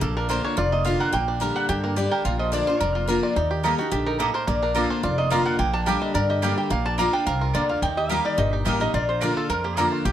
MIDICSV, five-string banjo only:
0, 0, Header, 1, 2, 480
1, 0, Start_track
1, 0, Key_signature, -2, "major"
1, 0, Tempo, 278810
1, 33, Time_signature, 4, 2, 24, 8
1, 17428, End_track
2, 0, Start_track
2, 0, Title_t, "Five-string banjo"
2, 0, Program_c, 0, 105
2, 0, Note_on_c, 0, 70, 51
2, 28, Note_on_c, 0, 58, 75
2, 287, Note_on_c, 0, 62, 58
2, 503, Note_off_c, 0, 70, 0
2, 510, Note_on_c, 0, 70, 62
2, 760, Note_off_c, 0, 62, 0
2, 767, Note_on_c, 0, 62, 53
2, 992, Note_on_c, 0, 65, 64
2, 1238, Note_off_c, 0, 58, 0
2, 1245, Note_on_c, 0, 58, 60
2, 1448, Note_off_c, 0, 65, 0
2, 1468, Note_on_c, 0, 65, 56
2, 1718, Note_off_c, 0, 70, 0
2, 1725, Note_on_c, 0, 70, 52
2, 1947, Note_off_c, 0, 58, 0
2, 1949, Note_off_c, 0, 65, 0
2, 1954, Note_on_c, 0, 58, 74
2, 2198, Note_off_c, 0, 62, 0
2, 2205, Note_on_c, 0, 62, 59
2, 2425, Note_off_c, 0, 70, 0
2, 2432, Note_on_c, 0, 70, 62
2, 2662, Note_off_c, 0, 62, 0
2, 2683, Note_on_c, 0, 62, 58
2, 2908, Note_on_c, 0, 67, 62
2, 3155, Note_off_c, 0, 58, 0
2, 3162, Note_on_c, 0, 58, 56
2, 3343, Note_off_c, 0, 62, 0
2, 3366, Note_off_c, 0, 67, 0
2, 3387, Note_on_c, 0, 67, 60
2, 3638, Note_off_c, 0, 70, 0
2, 3645, Note_on_c, 0, 70, 51
2, 3866, Note_off_c, 0, 67, 0
2, 3872, Note_on_c, 0, 65, 59
2, 4122, Note_on_c, 0, 53, 59
2, 4345, Note_on_c, 0, 62, 59
2, 4553, Note_off_c, 0, 65, 0
2, 4598, Note_on_c, 0, 65, 56
2, 4782, Note_off_c, 0, 53, 0
2, 4820, Note_off_c, 0, 70, 0
2, 4827, Note_on_c, 0, 70, 59
2, 5030, Note_off_c, 0, 62, 0
2, 5075, Note_off_c, 0, 58, 0
2, 5082, Note_on_c, 0, 58, 54
2, 5260, Note_off_c, 0, 65, 0
2, 5304, Note_off_c, 0, 70, 0
2, 5311, Note_on_c, 0, 70, 56
2, 5563, Note_on_c, 0, 65, 52
2, 5787, Note_off_c, 0, 65, 0
2, 5789, Note_on_c, 0, 63, 66
2, 6038, Note_on_c, 0, 67, 59
2, 6260, Note_off_c, 0, 70, 0
2, 6267, Note_on_c, 0, 70, 57
2, 6471, Note_off_c, 0, 63, 0
2, 6522, Note_on_c, 0, 63, 56
2, 6699, Note_off_c, 0, 67, 0
2, 6752, Note_on_c, 0, 67, 63
2, 6981, Note_off_c, 0, 63, 0
2, 7002, Note_on_c, 0, 63, 60
2, 7219, Note_off_c, 0, 58, 0
2, 7225, Note_on_c, 0, 58, 70
2, 7432, Note_off_c, 0, 67, 0
2, 7467, Note_off_c, 0, 70, 0
2, 7474, Note_on_c, 0, 70, 56
2, 7661, Note_off_c, 0, 63, 0
2, 7696, Note_off_c, 0, 58, 0
2, 7703, Note_on_c, 0, 58, 78
2, 7962, Note_on_c, 0, 62, 60
2, 8179, Note_off_c, 0, 70, 0
2, 8186, Note_on_c, 0, 70, 57
2, 8436, Note_off_c, 0, 62, 0
2, 8443, Note_on_c, 0, 62, 60
2, 8669, Note_on_c, 0, 65, 69
2, 8913, Note_off_c, 0, 58, 0
2, 8920, Note_on_c, 0, 58, 59
2, 9129, Note_off_c, 0, 65, 0
2, 9150, Note_on_c, 0, 65, 62
2, 9392, Note_off_c, 0, 70, 0
2, 9399, Note_on_c, 0, 70, 50
2, 9615, Note_off_c, 0, 58, 0
2, 9622, Note_on_c, 0, 58, 82
2, 9628, Note_off_c, 0, 65, 0
2, 9871, Note_off_c, 0, 62, 0
2, 9878, Note_on_c, 0, 62, 65
2, 10095, Note_off_c, 0, 70, 0
2, 10102, Note_on_c, 0, 70, 59
2, 10338, Note_off_c, 0, 62, 0
2, 10358, Note_on_c, 0, 62, 59
2, 10577, Note_off_c, 0, 70, 0
2, 10584, Note_on_c, 0, 70, 64
2, 10845, Note_on_c, 0, 67, 57
2, 11020, Note_off_c, 0, 62, 0
2, 11060, Note_off_c, 0, 58, 0
2, 11067, Note_on_c, 0, 58, 70
2, 11300, Note_off_c, 0, 67, 0
2, 11320, Note_on_c, 0, 67, 57
2, 11540, Note_off_c, 0, 58, 0
2, 11546, Note_off_c, 0, 67, 0
2, 11547, Note_on_c, 0, 58, 76
2, 11806, Note_on_c, 0, 62, 61
2, 12028, Note_off_c, 0, 70, 0
2, 12035, Note_on_c, 0, 70, 60
2, 12265, Note_off_c, 0, 62, 0
2, 12285, Note_on_c, 0, 62, 57
2, 12502, Note_off_c, 0, 70, 0
2, 12509, Note_on_c, 0, 70, 64
2, 12764, Note_on_c, 0, 65, 56
2, 12944, Note_off_c, 0, 62, 0
2, 12986, Note_off_c, 0, 58, 0
2, 12993, Note_on_c, 0, 58, 70
2, 13225, Note_off_c, 0, 65, 0
2, 13245, Note_on_c, 0, 65, 52
2, 13468, Note_on_c, 0, 63, 62
2, 13469, Note_off_c, 0, 65, 0
2, 13727, Note_on_c, 0, 67, 61
2, 13944, Note_off_c, 0, 70, 0
2, 13951, Note_on_c, 0, 70, 59
2, 14152, Note_off_c, 0, 63, 0
2, 14200, Note_on_c, 0, 63, 58
2, 14385, Note_off_c, 0, 67, 0
2, 14427, Note_on_c, 0, 67, 64
2, 14663, Note_off_c, 0, 63, 0
2, 14683, Note_on_c, 0, 63, 58
2, 14899, Note_off_c, 0, 58, 0
2, 14906, Note_on_c, 0, 58, 71
2, 15112, Note_off_c, 0, 67, 0
2, 15158, Note_off_c, 0, 70, 0
2, 15165, Note_on_c, 0, 70, 55
2, 15344, Note_off_c, 0, 63, 0
2, 15391, Note_on_c, 0, 65, 68
2, 15873, Note_on_c, 0, 62, 56
2, 16074, Note_off_c, 0, 65, 0
2, 16130, Note_on_c, 0, 65, 58
2, 16347, Note_off_c, 0, 70, 0
2, 16354, Note_on_c, 0, 70, 64
2, 16602, Note_off_c, 0, 58, 0
2, 16609, Note_on_c, 0, 58, 56
2, 16788, Note_off_c, 0, 65, 0
2, 16822, Note_off_c, 0, 70, 0
2, 16829, Note_on_c, 0, 70, 60
2, 17083, Note_on_c, 0, 65, 55
2, 17301, Note_off_c, 0, 65, 0
2, 17308, Note_on_c, 0, 67, 65
2, 17428, Note_off_c, 0, 58, 0
2, 17428, Note_off_c, 0, 62, 0
2, 17428, Note_off_c, 0, 67, 0
2, 17428, Note_off_c, 0, 70, 0
2, 17428, End_track
0, 0, End_of_file